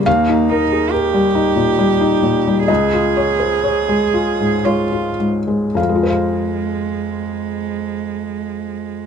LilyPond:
<<
  \new Staff \with { instrumentName = "Cello" } { \time 3/4 \key f \minor \tempo 4 = 59 bes8 ees'8 g'2 | aes'2 f'8 r8 | aes2. | }
  \new Staff \with { instrumentName = "Felt piano" } { \time 3/4 \key f \minor f''2. | ees''2 des''8 r8 | <f, f aes f' c'' f''>2. | }
  \new Staff \with { instrumentName = "Felt piano" } { \time 3/4 \key f \minor ees,16 ees'16 bes'16 aes'16 bes'16 g16 ees'16 bes,16 g16 ees'16 bes,16 g16 | des,16 f'16 des''16 c''16 des''16 aes16 f'16 aes,16 aes16 f'16 aes,16 aes16 | r2. | }
>>